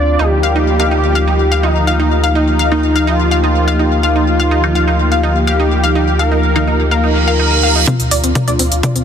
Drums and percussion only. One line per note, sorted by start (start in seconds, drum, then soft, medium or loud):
7.87 kick loud
7.87 closed hi-hat medium
7.87 mid tom soft
8.00 closed hi-hat soft
8.11 open hi-hat loud
8.24 closed hi-hat soft
8.35 kick loud
8.35 closed hi-hat medium
8.35 mid tom soft
8.48 closed hi-hat soft
8.59 open hi-hat loud
8.72 closed hi-hat soft
8.83 kick loud
8.83 closed hi-hat medium
8.83 mid tom soft
8.96 closed hi-hat soft